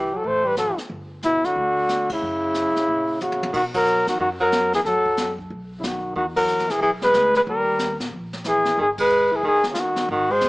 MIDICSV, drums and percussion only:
0, 0, Header, 1, 2, 480
1, 0, Start_track
1, 0, Tempo, 328048
1, 1327, Time_signature, 4, 2, 24, 8
1, 15348, End_track
2, 0, Start_track
2, 0, Title_t, "Drums"
2, 355, Note_on_c, 9, 36, 28
2, 359, Note_on_c, 9, 25, 39
2, 502, Note_off_c, 9, 36, 0
2, 828, Note_on_c, 9, 44, 56
2, 835, Note_on_c, 9, 38, 48
2, 974, Note_off_c, 9, 44, 0
2, 981, Note_off_c, 9, 38, 0
2, 1142, Note_on_c, 9, 38, 36
2, 1288, Note_off_c, 9, 38, 0
2, 1316, Note_on_c, 9, 36, 28
2, 1317, Note_off_c, 9, 25, 0
2, 1317, Note_on_c, 9, 25, 34
2, 1463, Note_off_c, 9, 36, 0
2, 1792, Note_on_c, 9, 44, 53
2, 1799, Note_on_c, 9, 38, 51
2, 1938, Note_off_c, 9, 44, 0
2, 1945, Note_off_c, 9, 38, 0
2, 2108, Note_on_c, 9, 38, 31
2, 2255, Note_off_c, 9, 38, 0
2, 2281, Note_on_c, 9, 36, 28
2, 2282, Note_off_c, 9, 25, 0
2, 2282, Note_on_c, 9, 25, 38
2, 2428, Note_off_c, 9, 36, 0
2, 2758, Note_on_c, 9, 44, 41
2, 2765, Note_on_c, 9, 38, 52
2, 2904, Note_off_c, 9, 44, 0
2, 2912, Note_off_c, 9, 38, 0
2, 3064, Note_on_c, 9, 51, 54
2, 3069, Note_on_c, 9, 36, 74
2, 3211, Note_off_c, 9, 51, 0
2, 3216, Note_off_c, 9, 36, 0
2, 3252, Note_off_c, 9, 25, 0
2, 3252, Note_on_c, 9, 25, 34
2, 3718, Note_on_c, 9, 44, 53
2, 3725, Note_on_c, 9, 38, 53
2, 3864, Note_off_c, 9, 44, 0
2, 3872, Note_off_c, 9, 38, 0
2, 4038, Note_on_c, 9, 38, 31
2, 4184, Note_off_c, 9, 38, 0
2, 4215, Note_off_c, 9, 25, 0
2, 4215, Note_on_c, 9, 25, 44
2, 4215, Note_on_c, 9, 36, 25
2, 4361, Note_off_c, 9, 36, 0
2, 4690, Note_on_c, 9, 44, 47
2, 4698, Note_on_c, 9, 48, 38
2, 4837, Note_off_c, 9, 44, 0
2, 4844, Note_off_c, 9, 48, 0
2, 4854, Note_on_c, 9, 48, 44
2, 5000, Note_off_c, 9, 48, 0
2, 5016, Note_on_c, 9, 48, 64
2, 5163, Note_off_c, 9, 48, 0
2, 5174, Note_off_c, 9, 25, 0
2, 5174, Note_on_c, 9, 25, 37
2, 5174, Note_on_c, 9, 49, 64
2, 5176, Note_on_c, 9, 36, 65
2, 5320, Note_off_c, 9, 49, 0
2, 5323, Note_off_c, 9, 36, 0
2, 5474, Note_on_c, 9, 49, 77
2, 5479, Note_on_c, 9, 36, 92
2, 5620, Note_off_c, 9, 49, 0
2, 5625, Note_off_c, 9, 36, 0
2, 5652, Note_on_c, 9, 44, 52
2, 5798, Note_off_c, 9, 44, 0
2, 5954, Note_on_c, 9, 38, 33
2, 6101, Note_off_c, 9, 38, 0
2, 6137, Note_on_c, 9, 36, 30
2, 6143, Note_off_c, 9, 25, 0
2, 6143, Note_on_c, 9, 25, 43
2, 6284, Note_off_c, 9, 36, 0
2, 6612, Note_on_c, 9, 44, 57
2, 6620, Note_on_c, 9, 38, 62
2, 6759, Note_off_c, 9, 44, 0
2, 6766, Note_off_c, 9, 38, 0
2, 6922, Note_on_c, 9, 38, 37
2, 7069, Note_off_c, 9, 38, 0
2, 7096, Note_on_c, 9, 36, 34
2, 7098, Note_off_c, 9, 25, 0
2, 7098, Note_on_c, 9, 25, 38
2, 7098, Note_on_c, 9, 38, 30
2, 7243, Note_off_c, 9, 36, 0
2, 7244, Note_off_c, 9, 38, 0
2, 7399, Note_on_c, 9, 36, 55
2, 7545, Note_off_c, 9, 36, 0
2, 7564, Note_on_c, 9, 44, 55
2, 7572, Note_on_c, 9, 38, 67
2, 7711, Note_off_c, 9, 44, 0
2, 7718, Note_off_c, 9, 38, 0
2, 7879, Note_on_c, 9, 36, 55
2, 8025, Note_off_c, 9, 36, 0
2, 8055, Note_on_c, 9, 36, 31
2, 8056, Note_off_c, 9, 25, 0
2, 8056, Note_on_c, 9, 25, 42
2, 8202, Note_off_c, 9, 36, 0
2, 8531, Note_on_c, 9, 44, 53
2, 8538, Note_on_c, 9, 38, 60
2, 8677, Note_off_c, 9, 44, 0
2, 8685, Note_off_c, 9, 38, 0
2, 9008, Note_off_c, 9, 25, 0
2, 9008, Note_on_c, 9, 25, 49
2, 9011, Note_on_c, 9, 36, 27
2, 9157, Note_off_c, 9, 36, 0
2, 9310, Note_on_c, 9, 49, 82
2, 9313, Note_on_c, 9, 36, 98
2, 9457, Note_off_c, 9, 49, 0
2, 9459, Note_off_c, 9, 36, 0
2, 9476, Note_on_c, 9, 44, 55
2, 9623, Note_off_c, 9, 44, 0
2, 9645, Note_on_c, 9, 38, 31
2, 9791, Note_off_c, 9, 38, 0
2, 9799, Note_on_c, 9, 38, 42
2, 9945, Note_off_c, 9, 38, 0
2, 9960, Note_off_c, 9, 25, 0
2, 9960, Note_on_c, 9, 25, 40
2, 9966, Note_on_c, 9, 36, 28
2, 10112, Note_off_c, 9, 36, 0
2, 10267, Note_on_c, 9, 38, 48
2, 10413, Note_off_c, 9, 38, 0
2, 10441, Note_on_c, 9, 44, 47
2, 10448, Note_on_c, 9, 38, 62
2, 10587, Note_off_c, 9, 44, 0
2, 10594, Note_off_c, 9, 38, 0
2, 10749, Note_on_c, 9, 38, 40
2, 10895, Note_off_c, 9, 38, 0
2, 10925, Note_on_c, 9, 36, 34
2, 10927, Note_off_c, 9, 25, 0
2, 10927, Note_on_c, 9, 25, 44
2, 11072, Note_off_c, 9, 36, 0
2, 11395, Note_on_c, 9, 44, 60
2, 11402, Note_on_c, 9, 38, 53
2, 11541, Note_off_c, 9, 44, 0
2, 11548, Note_off_c, 9, 38, 0
2, 11708, Note_on_c, 9, 38, 46
2, 11854, Note_off_c, 9, 38, 0
2, 11881, Note_off_c, 9, 25, 0
2, 11881, Note_on_c, 9, 25, 39
2, 11883, Note_on_c, 9, 36, 28
2, 12029, Note_off_c, 9, 36, 0
2, 12189, Note_on_c, 9, 38, 49
2, 12336, Note_off_c, 9, 38, 0
2, 12350, Note_on_c, 9, 44, 59
2, 12357, Note_on_c, 9, 38, 61
2, 12496, Note_off_c, 9, 44, 0
2, 12504, Note_off_c, 9, 38, 0
2, 12658, Note_on_c, 9, 38, 43
2, 12804, Note_off_c, 9, 38, 0
2, 12836, Note_off_c, 9, 25, 0
2, 12836, Note_on_c, 9, 25, 47
2, 12838, Note_on_c, 9, 36, 34
2, 12985, Note_off_c, 9, 36, 0
2, 13138, Note_on_c, 9, 49, 75
2, 13141, Note_on_c, 9, 36, 85
2, 13285, Note_off_c, 9, 49, 0
2, 13287, Note_off_c, 9, 36, 0
2, 13307, Note_on_c, 9, 44, 49
2, 13453, Note_off_c, 9, 44, 0
2, 13797, Note_off_c, 9, 25, 0
2, 13797, Note_on_c, 9, 25, 45
2, 13799, Note_on_c, 9, 36, 30
2, 13946, Note_off_c, 9, 36, 0
2, 14098, Note_on_c, 9, 38, 52
2, 14244, Note_off_c, 9, 38, 0
2, 14261, Note_on_c, 9, 44, 66
2, 14268, Note_on_c, 9, 38, 64
2, 14407, Note_off_c, 9, 44, 0
2, 14414, Note_off_c, 9, 38, 0
2, 14574, Note_on_c, 9, 38, 52
2, 14721, Note_off_c, 9, 38, 0
2, 14757, Note_off_c, 9, 25, 0
2, 14757, Note_on_c, 9, 25, 47
2, 14759, Note_on_c, 9, 36, 31
2, 14905, Note_off_c, 9, 36, 0
2, 15228, Note_on_c, 9, 44, 52
2, 15236, Note_on_c, 9, 38, 59
2, 15348, Note_off_c, 9, 25, 0
2, 15348, Note_off_c, 9, 38, 0
2, 15348, Note_off_c, 9, 44, 0
2, 15348, End_track
0, 0, End_of_file